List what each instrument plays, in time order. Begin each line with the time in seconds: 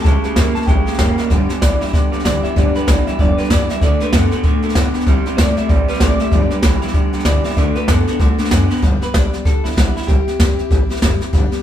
0.02 upright bass C#2, steel-string acoustic guitar C#3 G3 A#3 E4 G4, clean electric guitar C#3 A5, kick, snare
0.06 clean electric guitar G#3
0.23 clean electric guitar C#3 G#3, steel-string acoustic guitar A#3 E4 G4, muted upright bass stroke, snare
0.36 upright bass E2, steel-string acoustic guitar C#3 G3 A#3 E4 G4, clean electric guitar C#3 A#3, kick, snare, hi-hat pedal
0.55 clean electric guitar C#3 A#3 A5, steel-string acoustic guitar A#3 E4 G4, muted upright bass stroke, snare
0.62 snare
0.67 upright bass A#1, clean electric guitar C#3 G#3 G5, steel-string acoustic guitar G3 A#3 E4 G4, kick, snare
0.86 clean electric guitar C#3 G#3, steel-string acoustic guitar A#3 E4 G4, muted upright bass stroke, snare
0.93 snare
0.98 upright bass F#1, steel-string acoustic guitar C#3 G3 A#3 E4 G4, clean electric guitar C#3 A#3, kick, snare, hi-hat pedal
1.18 clean electric guitar C#3 A#3, steel-string acoustic guitar A#3 E4 G4, muted upright bass stroke, snare
1.30 upright bass G1, clean electric guitar G2 D3, steel-string acoustic guitar G2 D3 G3 B3 D4 G4, kick, snare
1.49 clean electric guitar G2 D3, steel-string acoustic guitar G3 B3 D4 G4, muted upright bass stroke, snare
1.61 upright bass B1, clean electric guitar G2 E3 D5, steel-string acoustic guitar G2 D3 G3 B3 D4 G4, kick, snare, hi-hat pedal
1.80 clean electric guitar G2 E3 E5, steel-string acoustic guitar G3 B3 D4 G4, muted upright bass stroke, snare
1.87 snare
1.93 upright bass D2, clean electric guitar G2 D3 D5, steel-string acoustic guitar G3 B3 D4 G4, kick, snare
2.12 upright bass D2, clean electric guitar G2 D3 B4, steel-string acoustic guitar G3 B3 D4 G4, snare
2.19 snare
2.24 upright bass D2, clean electric guitar G2 E3 D5, steel-string acoustic guitar G2 D3 G3 B3 D4 G4, kick, snare, hi-hat pedal
2.43 clean electric guitar G2 E3 E5, steel-string acoustic guitar G3 B3 D4 G4, muted upright bass stroke, snare
2.56 upright bass G1, clean electric guitar G2 D3 D5, steel-string acoustic guitar G2 D3 G3 B3 D4 G4, kick, snare
2.75 clean electric guitar G2 D3 B4, steel-string acoustic guitar G3 B3 D4 G4, muted upright bass stroke, snare
2.87 upright bass B1, steel-string acoustic guitar G2 D3 G3 B3 D4 G4, clean electric guitar G2 E3 D5, kick, snare, hi-hat pedal
3.07 clean electric guitar G2 E3 E5, steel-string acoustic guitar G3 B3 D4 G4, snare
3.19 upright bass F1, clean electric guitar G2 D3 D5, steel-string acoustic guitar G3 B3 D4 G4, kick, snare
3.37 clean electric guitar G2 D3 B4, steel-string acoustic guitar G3 B3 D4 G4, muted upright bass stroke, snare
3.44 snare
3.50 upright bass E2, steel-string acoustic guitar G2 D3 G3 B3 D4 G4, clean electric guitar G2 E3 D5, kick, snare, hi-hat pedal
3.69 clean electric guitar G2 E3 E5, steel-string acoustic guitar G3 B3 D4 G4, muted upright bass stroke, snare
3.81 upright bass D2, clean electric guitar D3 A3 D5, steel-string acoustic guitar D3 A3 D4 F#4 A4, kick, snare
4.00 clean electric guitar D3 A3 B4, steel-string acoustic guitar D4 F#4 A4, muted upright bass stroke, snare
4.13 upright bass F#2, clean electric guitar D3 B3 A4, steel-string acoustic guitar D3 A3 D4 F#4 A4, kick, snare, hi-hat pedal
4.31 clean electric guitar D3 B3, steel-string acoustic guitar D4 F#4 A4, muted upright bass stroke, snare
4.43 upright bass A2, clean electric guitar D3 A3, steel-string acoustic guitar A3 D4 F#4 A4, kick, snare
4.62 clean electric guitar D3 A3, steel-string acoustic guitar D4 F#4 A4, snare
4.69 snare
4.75 upright bass A2, steel-string acoustic guitar D3 A3 D4 F#4 A4, clean electric guitar D3 B3, kick, snare, hi-hat pedal
4.94 clean electric guitar D3 B3, steel-string acoustic guitar D4 F#4 A4, muted upright bass stroke, snare
5.00 snare
5.06 upright bass C2, steel-string acoustic guitar C3 G3 C4 E4 G4, clean electric guitar C3 G3, kick, snare
5.26 clean electric guitar C3 G3, steel-string acoustic guitar C4 E4 G4, snare
5.37 upright bass E2, steel-string acoustic guitar C3 G3 C4 E4 G4, clean electric guitar C3 A3 D5, kick, snare, hi-hat pedal
5.57 clean electric guitar C3 A3 E5, steel-string acoustic guitar C4 E4 G4, muted upright bass stroke, snare
5.69 upright bass A1, clean electric guitar C3 G3 D5, steel-string acoustic guitar G3 C4 E4 G4, kick, snare
5.88 clean electric guitar C3 G3 B4, steel-string acoustic guitar C4 E4 G4, snare
5.94 snare
6.00 upright bass A1, steel-string acoustic guitar C3 G3 C4 E4 G4, clean electric guitar C3 A3 D5, kick, snare, hi-hat pedal
6.20 clean electric guitar C3 A3 E5, steel-string acoustic guitar C4 E4 G4, snare
6.31 upright bass G1, steel-string acoustic guitar G2 D3 G3 B3 D4 G4, clean electric guitar G2 D3 D5, kick, snare
6.51 clean electric guitar G2 D3 B4, steel-string acoustic guitar G3 B3 D4 G4, muted upright bass stroke, snare
6.62 upright bass B1, clean electric guitar G2 E3 D5, steel-string acoustic guitar G2 D3 G3 B3 D4 G4, kick, snare, hi-hat pedal
6.82 clean electric guitar G2 E3 E5, steel-string acoustic guitar G3 B3 D4 G4, muted upright bass stroke, snare
6.88 snare
6.93 upright bass D2, clean electric guitar G2 D3 D5, steel-string acoustic guitar G3 B3 D4 G4, kick, snare
7.13 upright bass D2, clean electric guitar G2 D3 B4, steel-string acoustic guitar G3 B3 D4 G4, snare
7.19 snare
7.25 upright bass D2, clean electric guitar G2 E3 D5, steel-string acoustic guitar G2 D3 G3 B3 D4 G4, kick, snare, hi-hat pedal
7.44 clean electric guitar G2 E3 E5, steel-string acoustic guitar G3 B3 D4 G4, muted upright bass stroke, snare
7.50 snare
7.56 upright bass D2, steel-string acoustic guitar D3 A3 D4 F#4 A4, clean electric guitar D3 A3 D5, kick, snare
7.75 clean electric guitar D3 A3 B4, steel-string acoustic guitar D4 F#4 A4, snare
7.88 upright bass F#2, clean electric guitar D3 B3 A4, steel-string acoustic guitar D3 A3 D4 F#4 A4, kick, snare, hi-hat pedal
8.07 clean electric guitar D3 B3, steel-string acoustic guitar D4 F#4 A4, muted upright bass stroke, snare
8.19 upright bass C2, clean electric guitar D3 A3, steel-string acoustic guitar A3 D4 F#4 A4, kick, snare
8.38 clean electric guitar D3 A3, steel-string acoustic guitar D4 F#4 A4, muted upright bass stroke, snare
8.45 snare
8.51 upright bass F#2, steel-string acoustic guitar D3 A3 D4 F#4 A4, clean electric guitar D3 B3, kick, snare, hi-hat pedal
8.70 clean electric guitar D3 B3, steel-string acoustic guitar D4 F#4 A4, muted upright bass stroke, snare
8.77 snare
8.82 upright bass G1, steel-string acoustic guitar G2 D3 G3 B3 D4 G4, kick, snare
9.01 steel-string acoustic guitar G3 B3 D4 G4, clean electric guitar B4, muted upright bass stroke, snare
9.14 upright bass B1, steel-string acoustic guitar G2 D3 G3 B3 D4 G4, clean electric guitar D5, kick, snare, hi-hat pedal
9.33 steel-string acoustic guitar G3 B3 D4 G4, muted upright bass stroke, snare
9.45 upright bass D2, steel-string acoustic guitar G3 B3 D4 G4, clean electric guitar A4, kick, snare
9.64 upright bass D2, steel-string acoustic guitar G3 B3 D4 G4, clean electric guitar E4, snare
9.71 snare
9.76 upright bass B1, steel-string acoustic guitar G2 D3 G3 B3 D4 G4, kick, snare, hi-hat pedal
9.96 steel-string acoustic guitar G3 B3 D4 G4, clean electric guitar E4, muted upright bass stroke, snare
10.02 snare
10.07 upright bass C2, steel-string acoustic guitar C3 G3 C4 E4 G4, clean electric guitar G4, kick, snare
10.27 steel-string acoustic guitar C4 E4 G4, muted upright bass stroke, snare
10.39 upright bass E2, steel-string acoustic guitar C3 G3 C4 E4 G4, kick, snare, hi-hat pedal
10.59 steel-string acoustic guitar C4 E4 G4, muted upright bass stroke, snare
10.71 upright bass A1, steel-string acoustic guitar G3 C4 E4 G4, kick, snare
10.89 steel-string acoustic guitar C4 E4 G4, muted upright bass stroke, snare
10.96 snare
11.02 upright bass F#1, steel-string acoustic guitar C3 G3 C4 E4 G4, kick, snare, hi-hat pedal
11.20 steel-string acoustic guitar C4 E4 G4, muted upright bass stroke, snare
11.33 upright bass G1, steel-string acoustic guitar G2 D3 G3 B3 D4 G4, kick, snare
11.51 steel-string acoustic guitar G3 B3 D4 G4, muted upright bass stroke, snare